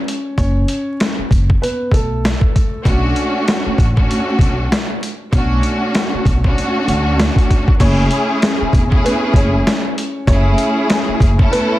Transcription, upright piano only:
0, 0, Header, 1, 2, 480
1, 0, Start_track
1, 0, Key_signature, 3, "minor"
1, 0, Tempo, 618557
1, 293, Time_signature, 4, 2, 24, 8
1, 9149, End_track
2, 0, Start_track
2, 0, Title_t, "Upright piano"
2, 0, Program_c, 0, 0
2, 0, Note_on_c, 0, 61, 60
2, 0, Note_on_c, 0, 73, 75
2, 265, Note_off_c, 0, 73, 0
2, 268, Note_off_c, 0, 61, 0
2, 292, Note_on_c, 0, 73, 91
2, 299, Note_on_c, 0, 61, 72
2, 886, Note_off_c, 0, 73, 0
2, 889, Note_off_c, 0, 61, 0
2, 1255, Note_on_c, 0, 71, 85
2, 1262, Note_on_c, 0, 59, 62
2, 1470, Note_off_c, 0, 71, 0
2, 1474, Note_off_c, 0, 59, 0
2, 1498, Note_on_c, 0, 69, 82
2, 1505, Note_on_c, 0, 57, 63
2, 2184, Note_off_c, 0, 69, 0
2, 2188, Note_off_c, 0, 57, 0
2, 6059, Note_on_c, 0, 73, 102
2, 6065, Note_on_c, 0, 61, 74
2, 6649, Note_off_c, 0, 73, 0
2, 6652, Note_off_c, 0, 61, 0
2, 7018, Note_on_c, 0, 71, 85
2, 7026, Note_on_c, 0, 59, 66
2, 7232, Note_off_c, 0, 71, 0
2, 7236, Note_off_c, 0, 59, 0
2, 7260, Note_on_c, 0, 73, 77
2, 7267, Note_on_c, 0, 61, 62
2, 7945, Note_off_c, 0, 73, 0
2, 7949, Note_off_c, 0, 61, 0
2, 7973, Note_on_c, 0, 73, 94
2, 7979, Note_on_c, 0, 61, 70
2, 8566, Note_off_c, 0, 73, 0
2, 8569, Note_off_c, 0, 61, 0
2, 8936, Note_on_c, 0, 71, 86
2, 8941, Note_on_c, 0, 59, 64
2, 9149, Note_off_c, 0, 59, 0
2, 9149, Note_off_c, 0, 71, 0
2, 9149, End_track
0, 0, End_of_file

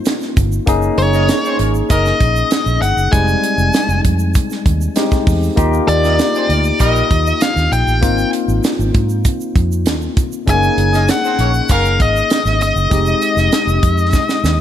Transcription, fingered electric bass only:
0, 0, Header, 1, 2, 480
1, 0, Start_track
1, 0, Tempo, 611621
1, 528, Time_signature, 4, 2, 24, 8
1, 11463, End_track
2, 0, Start_track
2, 0, Title_t, "Fingered electric bass"
2, 0, Program_c, 0, 33
2, 290, Note_on_c, 0, 31, 90
2, 455, Note_off_c, 0, 31, 0
2, 529, Note_on_c, 0, 30, 91
2, 694, Note_off_c, 0, 30, 0
2, 768, Note_on_c, 0, 30, 118
2, 1017, Note_off_c, 0, 30, 0
2, 1250, Note_on_c, 0, 32, 76
2, 1416, Note_off_c, 0, 32, 0
2, 1492, Note_on_c, 0, 30, 93
2, 1657, Note_off_c, 0, 30, 0
2, 1731, Note_on_c, 0, 34, 82
2, 1897, Note_off_c, 0, 34, 0
2, 2089, Note_on_c, 0, 34, 97
2, 2173, Note_off_c, 0, 34, 0
2, 2209, Note_on_c, 0, 31, 93
2, 2292, Note_off_c, 0, 31, 0
2, 2329, Note_on_c, 0, 30, 85
2, 2413, Note_off_c, 0, 30, 0
2, 2454, Note_on_c, 0, 29, 98
2, 2619, Note_off_c, 0, 29, 0
2, 2808, Note_on_c, 0, 29, 87
2, 2892, Note_off_c, 0, 29, 0
2, 3049, Note_on_c, 0, 29, 95
2, 3133, Note_off_c, 0, 29, 0
2, 3174, Note_on_c, 0, 41, 89
2, 3423, Note_off_c, 0, 41, 0
2, 3654, Note_on_c, 0, 39, 84
2, 3820, Note_off_c, 0, 39, 0
2, 4135, Note_on_c, 0, 40, 87
2, 4301, Note_off_c, 0, 40, 0
2, 4375, Note_on_c, 0, 39, 93
2, 4541, Note_off_c, 0, 39, 0
2, 4614, Note_on_c, 0, 39, 100
2, 4863, Note_off_c, 0, 39, 0
2, 5095, Note_on_c, 0, 38, 86
2, 5261, Note_off_c, 0, 38, 0
2, 5337, Note_on_c, 0, 34, 83
2, 5503, Note_off_c, 0, 34, 0
2, 5576, Note_on_c, 0, 39, 89
2, 5742, Note_off_c, 0, 39, 0
2, 5936, Note_on_c, 0, 39, 105
2, 6019, Note_off_c, 0, 39, 0
2, 6056, Note_on_c, 0, 34, 94
2, 6139, Note_off_c, 0, 34, 0
2, 6174, Note_on_c, 0, 33, 81
2, 6298, Note_off_c, 0, 33, 0
2, 6298, Note_on_c, 0, 32, 92
2, 6463, Note_off_c, 0, 32, 0
2, 6656, Note_on_c, 0, 32, 104
2, 6739, Note_off_c, 0, 32, 0
2, 6899, Note_on_c, 0, 32, 88
2, 6981, Note_off_c, 0, 32, 0
2, 7020, Note_on_c, 0, 44, 99
2, 7268, Note_off_c, 0, 44, 0
2, 7499, Note_on_c, 0, 41, 83
2, 7737, Note_off_c, 0, 41, 0
2, 7737, Note_on_c, 0, 39, 88
2, 7902, Note_off_c, 0, 39, 0
2, 8221, Note_on_c, 0, 30, 99
2, 8385, Note_off_c, 0, 30, 0
2, 8456, Note_on_c, 0, 30, 110
2, 8705, Note_off_c, 0, 30, 0
2, 8937, Note_on_c, 0, 34, 78
2, 9102, Note_off_c, 0, 34, 0
2, 9178, Note_on_c, 0, 30, 88
2, 9417, Note_off_c, 0, 30, 0
2, 9417, Note_on_c, 0, 32, 82
2, 9582, Note_off_c, 0, 32, 0
2, 9773, Note_on_c, 0, 32, 100
2, 9894, Note_off_c, 0, 32, 0
2, 9894, Note_on_c, 0, 31, 86
2, 9977, Note_off_c, 0, 31, 0
2, 10013, Note_on_c, 0, 30, 77
2, 10096, Note_off_c, 0, 30, 0
2, 10133, Note_on_c, 0, 29, 106
2, 10299, Note_off_c, 0, 29, 0
2, 10490, Note_on_c, 0, 29, 97
2, 10574, Note_off_c, 0, 29, 0
2, 10729, Note_on_c, 0, 29, 93
2, 10813, Note_off_c, 0, 29, 0
2, 10853, Note_on_c, 0, 41, 88
2, 11101, Note_off_c, 0, 41, 0
2, 11330, Note_on_c, 0, 39, 74
2, 11463, Note_off_c, 0, 39, 0
2, 11463, End_track
0, 0, End_of_file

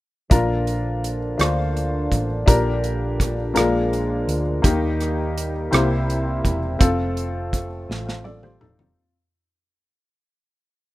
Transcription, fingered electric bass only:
0, 0, Header, 1, 2, 480
1, 0, Start_track
1, 0, Key_signature, -2, "major"
1, 0, Tempo, 721154
1, 208, Time_signature, 6, 3, 24, 8
1, 7282, End_track
2, 0, Start_track
2, 0, Title_t, "Fingered electric bass"
2, 0, Program_c, 0, 33
2, 207, Note_on_c, 0, 34, 79
2, 901, Note_off_c, 0, 34, 0
2, 926, Note_on_c, 0, 38, 74
2, 1381, Note_off_c, 0, 38, 0
2, 1406, Note_on_c, 0, 33, 60
2, 1628, Note_off_c, 0, 33, 0
2, 1650, Note_on_c, 0, 34, 91
2, 2343, Note_off_c, 0, 34, 0
2, 2368, Note_on_c, 0, 34, 76
2, 2822, Note_off_c, 0, 34, 0
2, 2846, Note_on_c, 0, 38, 65
2, 3068, Note_off_c, 0, 38, 0
2, 3090, Note_on_c, 0, 39, 83
2, 3783, Note_off_c, 0, 39, 0
2, 3811, Note_on_c, 0, 36, 81
2, 4264, Note_off_c, 0, 36, 0
2, 4289, Note_on_c, 0, 28, 72
2, 4510, Note_off_c, 0, 28, 0
2, 4532, Note_on_c, 0, 29, 91
2, 5224, Note_off_c, 0, 29, 0
2, 5254, Note_on_c, 0, 33, 75
2, 5706, Note_off_c, 0, 33, 0
2, 5733, Note_on_c, 0, 28, 72
2, 5952, Note_off_c, 0, 28, 0
2, 7282, End_track
0, 0, End_of_file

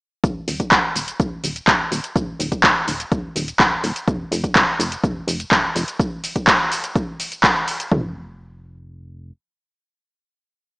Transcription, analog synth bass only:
0, 0, Header, 1, 2, 480
1, 0, Start_track
1, 0, Tempo, 480000
1, 237, Time_signature, 4, 2, 24, 8
1, 10794, End_track
2, 0, Start_track
2, 0, Title_t, "Analog synth bass"
2, 0, Program_c, 0, 38
2, 236, Note_on_c, 0, 27, 101
2, 407, Note_off_c, 0, 27, 0
2, 477, Note_on_c, 0, 27, 103
2, 647, Note_off_c, 0, 27, 0
2, 716, Note_on_c, 0, 27, 100
2, 803, Note_off_c, 0, 27, 0
2, 956, Note_on_c, 0, 27, 78
2, 1127, Note_off_c, 0, 27, 0
2, 1196, Note_on_c, 0, 27, 80
2, 1367, Note_off_c, 0, 27, 0
2, 1436, Note_on_c, 0, 27, 91
2, 1607, Note_off_c, 0, 27, 0
2, 1676, Note_on_c, 0, 27, 87
2, 1847, Note_off_c, 0, 27, 0
2, 1916, Note_on_c, 0, 27, 99
2, 2002, Note_off_c, 0, 27, 0
2, 2157, Note_on_c, 0, 27, 104
2, 2327, Note_off_c, 0, 27, 0
2, 2395, Note_on_c, 0, 27, 104
2, 2566, Note_off_c, 0, 27, 0
2, 2636, Note_on_c, 0, 27, 103
2, 2722, Note_off_c, 0, 27, 0
2, 2876, Note_on_c, 0, 27, 81
2, 3047, Note_off_c, 0, 27, 0
2, 3117, Note_on_c, 0, 27, 80
2, 3287, Note_off_c, 0, 27, 0
2, 3356, Note_on_c, 0, 27, 94
2, 3527, Note_off_c, 0, 27, 0
2, 3595, Note_on_c, 0, 27, 89
2, 3767, Note_off_c, 0, 27, 0
2, 3835, Note_on_c, 0, 27, 101
2, 3922, Note_off_c, 0, 27, 0
2, 4076, Note_on_c, 0, 29, 103
2, 4247, Note_off_c, 0, 29, 0
2, 4315, Note_on_c, 0, 29, 106
2, 4487, Note_off_c, 0, 29, 0
2, 4555, Note_on_c, 0, 29, 100
2, 4642, Note_off_c, 0, 29, 0
2, 4794, Note_on_c, 0, 29, 82
2, 4966, Note_off_c, 0, 29, 0
2, 5035, Note_on_c, 0, 29, 85
2, 5206, Note_off_c, 0, 29, 0
2, 5274, Note_on_c, 0, 29, 96
2, 5446, Note_off_c, 0, 29, 0
2, 5515, Note_on_c, 0, 29, 91
2, 5687, Note_off_c, 0, 29, 0
2, 5754, Note_on_c, 0, 29, 102
2, 5842, Note_off_c, 0, 29, 0
2, 7916, Note_on_c, 0, 29, 100
2, 9316, Note_off_c, 0, 29, 0
2, 10794, End_track
0, 0, End_of_file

